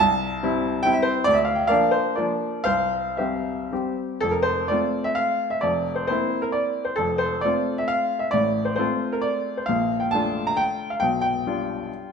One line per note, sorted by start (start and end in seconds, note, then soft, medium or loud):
0.00 0.42 C2 medium
0.00 0.85 A5 loud
0.43 0.82 G3 medium
0.43 0.82 C4 medium
0.43 0.83 E4 medium
0.83 1.23 G3 medium
0.83 1.23 C4 medium
0.83 1.23 E4 medium
0.83 0.95 G5 loud
0.93 1.05 E5 medium
1.02 1.25 C5 loud
1.24 1.70 D2 medium
1.24 1.36 D5 loud
1.34 1.46 E5 medium
1.45 1.58 F5 medium
1.55 1.69 G5 medium
1.67 2.15 F3 medium
1.67 2.15 A#3 medium
1.67 2.15 D4 medium
1.67 1.92 A#4 medium
1.67 1.92 D5 medium
1.67 1.94 F5 loud
1.91 2.18 C5 medium
2.16 2.64 F3 medium
2.16 2.64 A#3 soft
2.16 2.64 D4 medium
2.16 2.64 F4 medium
2.16 2.63 A#4 medium
2.16 2.67 D5 medium
2.64 3.18 C2 medium
2.64 3.15 C5 medium
2.64 3.18 F5 loud
3.17 3.66 G3 medium
3.17 3.67 C4 medium
3.17 3.71 G4 medium
3.17 3.92 C5 medium
3.17 3.95 E5 medium
3.72 4.18 G3 soft
3.72 4.19 C4 soft
3.72 4.19 G4 medium
4.21 4.69 F1 medium
4.21 4.69 F2 medium
4.21 4.33 A4 loud
4.31 4.44 A#4 medium
4.42 4.68 C5 loud
4.68 5.59 A3 medium
4.68 5.59 C4 medium
4.68 5.59 F4 medium
4.68 5.06 D5 medium
5.04 5.17 E5 medium
5.15 5.50 F5 medium
5.50 5.62 E5 medium
5.61 6.08 F1 medium
5.61 6.08 F2 medium
5.61 5.96 D5 medium
5.95 6.06 C5 medium
6.07 6.95 A#3 medium
6.07 6.95 C4 medium
6.07 6.95 E4 medium
6.07 6.43 C5 medium
6.42 6.54 A#4 medium
6.52 6.86 D5 medium
6.85 6.97 C5 medium
6.96 7.43 F1 medium
6.96 7.43 F2 medium
6.96 7.19 A4 medium
7.18 7.43 C5 medium
7.41 8.31 A3 medium
7.41 8.31 C4 medium
7.41 8.31 F4 medium
7.41 7.78 D5 medium
7.78 7.90 E5 medium
7.88 8.22 F5 medium
8.19 8.32 E5 medium
8.31 8.78 A1 medium
8.31 8.79 A2 medium
8.31 8.67 D5 medium
8.65 8.74 C5 medium
8.76 9.65 A3 medium
8.76 9.65 C4 medium
8.76 9.65 F4 medium
8.76 9.13 C5 medium
9.12 9.25 A#4 medium
9.22 9.57 D5 medium
9.57 9.69 C5 medium
9.66 10.13 A#1 medium
9.66 10.13 A#2 medium
9.66 10.01 F5 medium
10.00 10.13 G5 medium
10.11 10.98 A3 medium
10.11 10.98 D4 medium
10.11 10.98 F4 medium
10.11 10.47 A5 loud
10.47 10.59 A#5 medium
10.57 10.90 G5 loud
10.90 11.01 F5 medium
11.00 11.43 B1 medium
11.00 11.43 B2 medium
11.00 11.20 G5 loud
11.21 12.12 G5 medium
11.46 12.12 G3 medium
11.46 12.12 D4 soft
11.46 12.12 F4 medium